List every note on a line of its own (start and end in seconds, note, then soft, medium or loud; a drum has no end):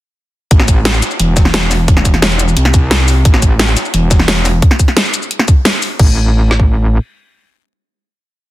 0.51 1.01 A1 loud
0.51 kick loud
0.51 closed hi-hat medium
0.60 snare soft
0.60 snare medium
0.68 kick medium
0.68 closed hi-hat medium
0.68 shaker medium
0.85 snare loud
0.85 closed hi-hat loud
0.85 closed hi-hat medium
0.94 shaker soft
1.02 snare soft
1.02 closed hi-hat medium
1.02 shaker medium
1.11 shaker soft
1.20 2.55 E1 loud
1.20 closed hi-hat loud
1.37 kick loud
1.37 snare soft
1.37 closed hi-hat medium
1.37 shaker medium
1.45 snare soft
1.54 snare loud
1.54 closed hi-hat loud
1.54 closed hi-hat medium
1.71 snare soft
1.71 closed hi-hat medium
1.71 open hi-hat medium
1.71 shaker medium
1.88 kick loud
1.88 closed hi-hat medium
1.97 snare soft
2.05 kick medium
2.05 closed hi-hat medium
2.05 shaker medium
2.14 snare soft
2.14 closed hi-hat soft
2.22 snare loud
2.22 closed hi-hat loud
2.22 closed hi-hat medium
2.31 closed hi-hat soft
2.31 shaker soft
2.40 closed hi-hat medium
2.40 shaker medium
2.48 shaker soft
2.57 3.24 C2 loud
2.57 closed hi-hat loud
2.65 snare medium
2.74 kick loud
2.74 closed hi-hat medium
2.74 shaker medium
2.91 snare loud
2.91 closed hi-hat loud
2.91 closed hi-hat medium
3.08 closed hi-hat medium
3.08 open hi-hat medium
3.08 shaker medium
3.25 3.75 A1 loud
3.25 kick loud
3.25 closed hi-hat medium
3.34 snare soft
3.34 snare medium
3.42 kick medium
3.42 closed hi-hat medium
3.42 shaker medium
3.59 snare loud
3.59 closed hi-hat medium
3.68 shaker soft
3.77 snare soft
3.77 closed hi-hat medium
3.77 shaker medium
3.85 shaker soft
3.94 4.61 E1 loud
3.94 closed hi-hat medium
4.11 kick loud
4.11 snare soft
4.11 closed hi-hat medium
4.11 shaker medium
4.19 snare soft
4.28 snare loud
4.28 closed hi-hat medium
4.45 snare soft
4.45 closed hi-hat medium
4.45 open hi-hat medium
4.45 shaker medium
4.62 kick loud
4.62 closed hi-hat medium
4.71 snare soft
4.79 kick medium
4.79 closed hi-hat medium
4.79 shaker medium
4.88 snare soft
4.97 snare loud
4.97 closed hi-hat medium
5.05 shaker soft
5.14 closed hi-hat medium
5.14 shaker medium
5.22 shaker soft
5.31 closed hi-hat medium
5.39 snare medium
5.48 kick loud
5.48 closed hi-hat medium
5.48 shaker medium
5.65 snare loud
5.65 closed hi-hat loud
5.82 open hi-hat medium
5.82 shaker medium
5.99 6.98 A1 medium
5.99 kick loud
5.99 crash medium
6.51 snare medium
6.60 kick medium